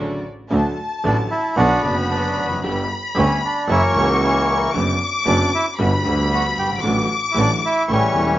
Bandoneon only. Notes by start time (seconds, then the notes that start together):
1.05 D4
1.31 E4
1.57 B3 D4 F#4
1.84 D4
2.10 F#3 B3 D4
3.17 C#4
3.45 D4
3.71 A#3 C#4 E4
3.98 C#4
4.24 E3 A#3 C#4
5.27 D4
5.55 E4
6.34 F#4
6.59 G4
7.31 E4
7.39 D4
7.66 E4
7.91 E3 G3 C#4